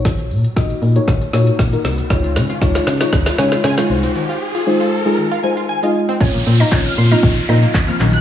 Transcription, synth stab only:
\new Staff \with { instrumentName = "Synth stab" } { \time 4/4 \key bes \minor \tempo 4 = 117 <bes ees' ges' des''>8. r16 <bes ees' ges' ees''>8. <bes ees' ges' des''>8. <bes ees' ges' des''>8. <bes ees' ges' bes'>8. | <aes ees' f' des''>8. r16 <aes ees' f' des''>8. <aes ees' f' des''>8. <aes ees' f' des''>8. <aes ees' f' des''>16 <aes ees' f' c''>8~ | <aes ees' f' c''>8. r16 <aes ees' f' c''>8. <aes ees' f' aes'>8. <aes ees' f' c''>8. <aes ees' f' ees''>8. | <des f bes c' f'>8. r16 <des f bes c' f'>8. <des f bes c' f'>8. <des f bes c' f'>8. <des f bes c' f'>16 <ees ges bes des' ges'>8 | }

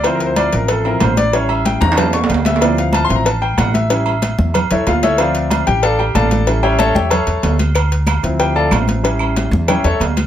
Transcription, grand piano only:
\new Staff \with { instrumentName = "Grand piano" } { \time 4/4 \key d \minor \tempo 4 = 187 << { \tuplet 3/2 { c''8 bes'8 c''8 } d''8 bes'8 a'8 bes'8 c''8 d''8 | cis''8 e''8 g''8 bes''8 a''8 cis'''8 r8 e''8 | d''8 f''8 \tuplet 3/2 { a''8 c'''8 bes''8 } a''8 g''8 fis''8 e''8~ | e''2 r8 <e' a' cis'' e''>8 <f' f''>8 <e' a' cis'' e''>8 |
<f' c'' d'' f''>4. <g' g''>8 <a' d'' f'' a''>8 <g' g''>8 <a' d'' f'' a''>4~ | <a' d'' f'' a''>8 <g' cis'' e'' g''>8 <a' cis'' e'' a''>8 <g' cis'' e'' g''>8 <a' cis'' e'' a''>4. r8 | r2 <g' g''>8 <a' d'' f'' a''>8 r4 | r2 <g' cis'' e'' g''>8 <a' cis'' e'' a''>8 r4 | } \\ { <f c' e'>2~ <f c' e'>8 <f c' e'>8 r4 | <g cis' e'>2 <g cis' e'>8 r4. | <f c' e'>4. <f c' e'>8 r2 | <g cis' e'>8 r2. r8 |
<f c' e''>4. r2 r8 | <g cis' e'>4. r2 r8 | r4. <f c' e'>2~ <f c' e'>8 | <g cis' e'>4. r8 <g cis' e'>8 r4. | } >> }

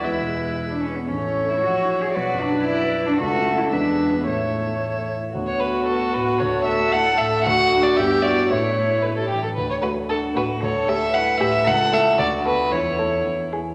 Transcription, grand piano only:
\new Staff \with { instrumentName = "Grand piano" } { \time 2/4 \key a \major \tempo 4 = 113 \tuplet 3/2 { e,8 b,8 gis'8 e''8 b'8 gis'8 } | \tuplet 3/2 { a,,8 e'8 <a' cis''>8 ais,,8 e'8 <fis' cis''>8 } | \tuplet 3/2 { b,,8 fis,8 fis'8 d''8 b'8 fis'8 } | \tuplet 3/2 { cis,8 cis'8 <e' a'>8 e,8 b8 <e' gis'>8 } |
\tuplet 3/2 { a,8 e8 e'8 cis''8 a'8 e'8 } | \key d \major d,8 a8 fis'8 a,8 | d,8 a8 e'8 a,8 | d,8 <d' fis'>8 g,8 <e' g'>8 |
a,8 a8 e'8 e8 | d,8 a8 d'8 a,8 | d,8 a8 e'8 a,8 | \key a \major cis,8 <e' a'>8 d,8 <fis' b'>8 |
e,8 <e' a'>8 e,8 <e' gis'>8 | }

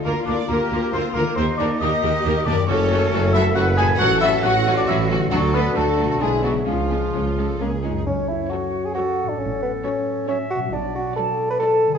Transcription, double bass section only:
\new Staff \with { instrumentName = "Double bass section" } { \clef bass \time 3/4 \key ees \major \tempo 4 = 136 d,8 d,8 d,8 d,8 d,8 d,8 | ees,8 ees,8 ees,8 ees,8 ees,8 ees,8 | \key fis \minor fis,,4 fis,,4 fis,,4 | a,,4 a,,4 a,,4 |
d,4 d,4 b,,4 | cis,4 cis,4 cis,4 | fis,,4 r2 | a,,4 r2 |
b,,4 r2 | }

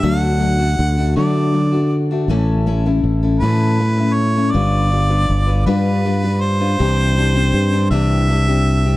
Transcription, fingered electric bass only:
\new Staff \with { instrumentName = "Fingered electric bass" } { \clef bass \time 6/8 \key g \lydian \tempo 4. = 53 d,4 d,8 d4. | a,,4 a,,8 a,4. | g,,4 g,,8 g,4. | \key c \lydian c,4 g,8 c,4. | }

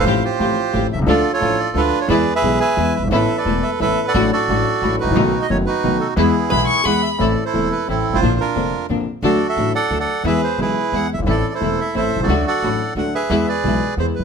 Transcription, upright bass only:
\new Staff \with { instrumentName = "Upright bass" } { \clef bass \time 3/4 \key e \mixolydian \tempo 4 = 177 a,,16. r8 r32 a,,16. r8 r32 a,,16. r16 b,,32 c,32 cis,32 | d,16. r8 r32 a,,16. r8 r32 d,16. r8 r32 | e,16. r8 r32 b,,16. r8 r32 e,16. r16 fis,,32 g,,32 gis,,32 | a,,16. r8 r32 e,,16. r8 r32 a,,16. r8 r32 |
a,,16. r8 r32 a,,16. r8 r32 a,,16. r16 gis,,32 a,,32 bes,,32 | b,,16. r8 r32 fis,,16. r8 r32 b,,16. r8 r32 | e,16. r8 r32 b,,16. r8 r32 e,16. r8 r32 | \key a \dorian a,,16. r8 r32 e,,16. r8 r32 a,,16. r16 g,,32 gis,,32 a,,32 |
bes,,16. r8 r32 f,,16. r8 r32 bes,,16. r8 r32 | d,16. r8 r32 a,,16. r8 r32 d,16. r8 r32 | e,16. r8 r32 b,,16. r8 r32 e,16. r16 fis,,32 g,,32 gis,,32 | a,,16. r8 r32 e,,16. r8 r32 a,,16. r16 b,,32 c,32 cis,32 |
d,16. r8 r32 a,,16. r8 r32 d,16. r8 r32 | e,16. r8 r32 b,,16. r8 r32 e,16. r16 fis,,32 r16 | }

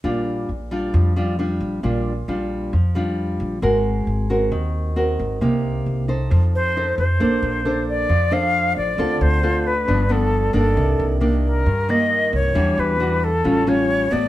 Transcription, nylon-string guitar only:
\new Staff \with { instrumentName = "Nylon-string guitar" } { \time 4/4 \key bes \major \tempo 4 = 134 << { <g d' f'>4 r8 <g d' f'>4 <g d' f'>8 <g d' f'>4 | <g d' f'>8 r8 <g d' f'>4 r8 <g d' f'>4. | <c' ges' bes'>4. <c' ges' bes'>4. <c' ges' bes'>4 | <bes ees' g'>4. <ees' a' c''>4. <ees' a' c''>8 r8 |
<d' a' c''>4 <d' a' c''>4 r8 <d' a' c''>4. | <c' f' a'>4 <c' f' a'>8 r8 <f b d'>8 <f b d'>4 <ees bes d'>8~ | <ees bes d'>4 <ees bes d'>4 r8 <ees bes>4. | <g d' fis'>4 <g d' fis'>8 r8 <g cis' eis'>8 <g cis' eis'>4 <a ces' ges'>8 | } \\ { bes,2 f2 | bes,2 f2 | aes2 ees2 | c2 f2 |
bes2 f2 | d2 g,2 | c2 g,2 | e2 a,2 | } >> }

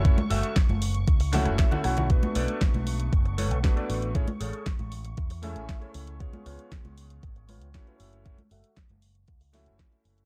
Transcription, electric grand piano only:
\new Staff \with { instrumentName = "Electric grand piano" } { \time 4/4 \key fis \minor \tempo 4 = 117 <a cis' e' fis' cis''>8 r2 <a cis' e' fis' e''>8 <a cis' e' fis' e''>8 <a cis' e' fis' fis''>8 | <a b d' fis' b'>2. <a b d' fis' b'>4 | <a cis' e' gis' cis''>8 r2 <a cis' e' e'' gis''>4. | <b cis' eis' gis' cis''>2. <a cis' e' fis' cis''>4 |
<a cis' e' fis' cis''>8 r2 <a cis' e' fis' e''>4. | }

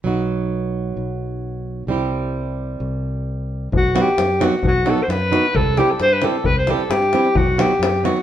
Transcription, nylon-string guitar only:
\new Staff \with { instrumentName = "Nylon-string guitar" } { \time 2/4 \tempo 4 = 132 <fis b dis' fis'>2~ | <fis b dis' fis'>2 | <g c' e' g'>2~ | <g c' e' g'>2 |
r8 <fis b dis' fis'>8 r8 <fis b dis' fis'>8 | r8 <fis b dis' fis'>8 r8 <fis b dis' fis'>8 | r8 <g c' e' g'>8 r8 <g c' e' g'>8 | r8 <g c' e' g'>8 r8 <g c' e' g'>8 |
r8 <fis b dis' fis'>8 r8 <fis b dis' fis'>8 | }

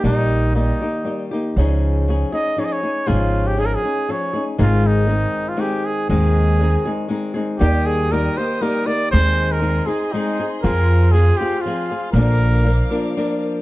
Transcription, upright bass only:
\new Staff \with { instrumentName = "Upright bass" } { \clef bass \time 3/4 \key aes \major \tempo 4 = 119 bes,,2 r4 | des,2 r4 | aes,,2 r4 | aes,,2 r4 |
ees,2 r4 | \key ees \major ees,2 r4 | ees,2 r4 | f,2 r4 |
bes,,2 r4 | }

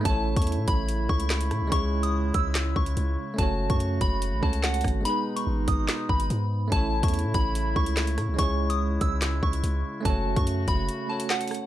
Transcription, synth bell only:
\new Staff \with { instrumentName = "Synth bell" } { \time 4/4 \key cis \minor \tempo 4 = 144 a''8. cis'''16 r8 b''4 cis'''4. | cis'''8. dis'''16 r8 e'''4 cis'''4. | a''8. cis'''16 r8 b''4 a''8 fis''8 r8 | b''8. cis'''16 r8 dis'''4 b''4. |
a''8. cis'''16 r8 b''4 cis'''4. | cis'''8. dis'''16 r8 e'''4 cis'''4. | a''8. cis'''16 r8 b''4 a''8 fis''8 r8 | }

